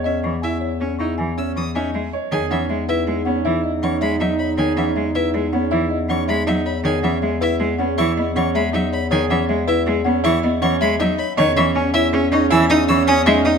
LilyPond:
<<
  \new Staff \with { instrumentName = "Violin" } { \time 6/4 \key e \major \tempo 4 = 159 e''8 r8 e''8 r2 e'''8 dis'''8 e''8 r4 | gis''8 e''8 r8 e''8 r2 cis'''8 b''8 e''8 b''8 | gis''8 e''8 r8 e''8 r2 cis'''8 b''8 e''8 b''8 | gis''8 e''8 r8 e''8 r4 cis'''8 r8 cis'''8 b''8 e''8 b''8 |
gis''8 e''8 r8 e''8 r4 cis'''8 r8 cis'''8 b''8 e''8 b''8 | cis'''8 e''8 r8 e''8 r8 dis''8 e'''8 dis'''8 e'''8 dis'''8 e''8 dis'''8 | }
  \new Staff \with { instrumentName = "Marimba" } { \time 6/4 \key e \major dis''8 cis'''8 gis''8 cis''8 gis'8 cis'''8 gis''8 e''8 cis'''8 gis''8 e''8 dis''8 | cis''8 fis''8 e''8 b'8 gis'8 fis''8 e''8 dis''8 fis''8 e''8 dis''8 cis''8 | cis''8 fis''8 e''8 b'8 gis'8 fis''8 e''8 dis''8 fis''8 e''8 dis''8 cis''8 | cis''8 fis''8 e''8 b'8 gis'8 fis''8 e''8 dis''8 fis''8 e''8 dis''8 cis''8 |
cis''8 fis''8 e''8 b'8 gis'8 fis''8 e''8 dis''8 fis''8 e''8 dis''8 cis''8 | dis''8 cis'''8 gis''8 cis''8 gis'8 cis'''8 gis''8 e''8 cis'''8 gis''8 e''8 dis''8 | }
  \new Staff \with { instrumentName = "Grand piano" } { \time 6/4 \key e \major cis'8 r8 e'8 r4 e'8 r8 cis'8 r8 dis'8 r8 cis''8 | gis'8 cis'8 r8 e'8 r8 cis'8 e'8 r8 cis'8 r8 dis'8 r8 | gis'8 cis'8 r8 e'8 r8 cis'8 e'8 r8 cis'8 r8 dis'8 r8 | gis'8 cis'8 r8 e'8 r8 cis'8 e'8 r8 cis'8 r8 dis'8 r8 |
gis'8 cis'8 r8 e'8 r8 cis'8 e'8 r8 cis'8 r8 dis'8 r8 | cis''8 cis'8 r8 e'8 r8 cis'8 e'8 r8 cis'8 r8 dis'8 r8 | }
  \new Staff \with { instrumentName = "Alto flute" } { \time 6/4 \key e \major r1. | dis'1.~ | dis'1~ dis'4. r8 | r1. |
r1. | cis'1. | }
  \new Staff \with { instrumentName = "Cello" } { \clef bass \time 6/4 \key e \major r8 e8 r4 cis'8 dis'8 e8 r8 e8 cis'8 gis8 r8 | dis8 e8 gis8 r8 gis8 b8 e8 r8 e8 gis8 fis8 r8 | dis8 e8 gis8 r8 gis8 b8 e8 r8 e8 gis8 fis8 r8 | dis8 e8 gis8 r8 gis8 b8 e8 b8 e8 gis8 fis8 r8 |
dis8 e8 gis8 r8 gis8 b8 e8 b8 e8 gis8 fis8 r8 | dis8 e8 cis'8 r8 cis'8 dis'8 e8 dis'8 e8 cis'8 gis8 dis'8 | }
  \new Staff \with { instrumentName = "Bass clarinet" } { \clef bass \time 6/4 \key e \major e,1. | e,1.~ | e,1.~ | e,1.~ |
e,1. | e,1. | }
>>